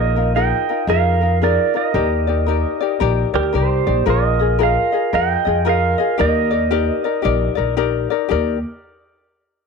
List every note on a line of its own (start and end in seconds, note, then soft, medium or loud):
0.00 0.51 A#1 medium
0.00 0.15 D#4 medium
0.00 0.16 F4 medium
0.00 0.15 G#4 medium
0.00 0.15 A#4 medium
0.00 0.33 A#4 medium
0.00 0.35 D#5 medium
0.16 0.35 D#4 soft
0.16 0.35 F4 soft
0.16 0.35 A#4 medium
0.35 0.69 D#4 medium
0.35 0.68 F4 medium
0.35 0.68 G#4 medium
0.35 0.68 A#4 medium
0.35 0.85 D#5 medium
0.35 0.89 G5 loud
0.69 0.88 D#4 soft
0.69 0.88 F4 soft
0.69 0.88 A#4 medium
0.87 1.57 F2 medium
0.87 1.22 D#4 medium
0.87 1.21 F4 medium
0.87 1.21 G#4 medium
0.87 1.38 A#4 medium
0.87 1.20 A#4 medium
0.87 1.43 F5 medium
1.21 1.41 D#4 soft
1.21 1.42 F4 soft
1.21 1.41 A#4 medium
1.42 1.75 D#4 medium
1.42 1.74 F4 medium
1.42 1.74 G#4 medium
1.42 1.73 A#4 medium
1.42 1.76 D5 medium
1.74 1.93 D#4 soft
1.74 1.94 F4 soft
1.74 1.93 A#4 medium
1.74 3.31 A#4 medium
1.74 3.31 D#5 medium
1.94 2.63 D#2 medium
1.94 2.28 D#4 medium
1.94 2.27 G4 medium
1.94 2.27 A#4 medium
1.94 2.26 D5 medium
2.27 2.47 D#4 soft
2.27 2.47 G4 soft
2.27 2.47 D5 medium
2.46 2.81 D#4 medium
2.46 2.81 G4 medium
2.46 2.80 A#4 medium
2.46 2.79 D5 medium
2.81 2.99 D#4 soft
2.81 3.00 G4 medium
2.81 3.00 D5 medium
3.00 3.22 A#1 medium
3.00 3.34 D#4 medium
3.00 3.33 G4 medium
3.00 3.33 A#4 medium
3.00 3.32 D5 medium
3.34 3.51 D2 medium
3.34 3.52 D#4 soft
3.34 3.53 G4 medium
3.34 3.55 A#4 medium
3.34 3.53 D5 medium
3.53 3.83 C2 medium
3.53 3.87 D#4 medium
3.53 3.86 G4 medium
3.53 3.86 A#4 medium
3.53 3.85 D5 medium
3.57 4.05 G4 medium
3.57 4.10 C5 medium
3.87 4.05 A#1 medium
3.87 4.06 D#4 soft
3.87 4.06 G4 soft
3.87 4.06 D5 medium
4.06 4.76 A#1 medium
4.06 4.40 F4 medium
4.06 4.39 G#4 medium
4.06 4.39 A#4 medium
4.06 4.57 A#4 medium
4.06 4.38 D#5 medium
4.10 4.63 D#5 loud
4.39 4.58 F4 soft
4.39 4.59 G#4 medium
4.39 4.59 D#5 medium
4.59 4.93 F4 medium
4.59 4.92 G#4 medium
4.59 4.92 A#4 medium
4.59 5.10 A#4 medium
4.59 4.91 D#5 medium
4.63 5.15 F5 loud
4.92 5.12 F4 soft
4.92 5.13 G#4 soft
4.92 5.12 D#5 medium
5.13 5.35 F2 medium
5.13 5.46 F4 medium
5.13 5.46 G#4 medium
5.13 5.46 A#4 medium
5.13 5.63 D#5 medium
5.13 5.44 D#5 medium
5.13 5.68 G5 loud
5.45 5.94 F2 medium
5.45 5.64 F4 soft
5.45 5.65 G#4 soft
5.45 5.65 D#5 medium
5.65 5.99 F4 medium
5.65 5.98 G#4 medium
5.65 5.98 A#4 medium
5.65 6.16 A#4 medium
5.65 5.97 D#5 medium
5.69 6.22 F5 loud
5.98 6.18 F4 soft
5.98 6.19 G#4 medium
5.98 6.18 D#5 medium
6.18 6.88 D#2 loud
6.18 6.52 D#4 medium
6.18 6.51 G4 medium
6.18 6.51 A#4 medium
6.18 7.74 A#4 medium
6.18 6.49 D5 medium
6.18 7.75 D#5 medium
6.51 6.70 D#4 soft
6.51 6.70 A#4 medium
6.51 6.71 D5 medium
6.71 7.05 D#4 medium
6.71 7.04 G4 medium
6.71 7.04 A#4 medium
6.71 7.03 D5 medium
7.04 7.22 D#4 soft
7.04 7.23 A#4 medium
7.04 7.24 D5 medium
7.22 7.46 A#1 medium
7.22 7.57 D#4 medium
7.22 7.57 G4 medium
7.22 7.56 A#4 medium
7.22 7.54 D5 medium
7.55 8.05 A#1 medium
7.55 7.76 D#4 soft
7.55 7.76 A#4 medium
7.55 7.76 D5 medium
7.77 8.10 D#4 medium
7.77 8.10 G4 medium
7.77 8.10 A#4 medium
7.77 8.09 D5 medium
8.10 8.28 D#4 medium
8.10 8.30 A#4 medium
8.10 8.30 D5 medium
8.29 8.62 D#2 medium
8.29 8.57 D#4 medium
8.29 8.56 G4 medium
8.29 8.57 A#4 medium
8.29 8.58 D5 medium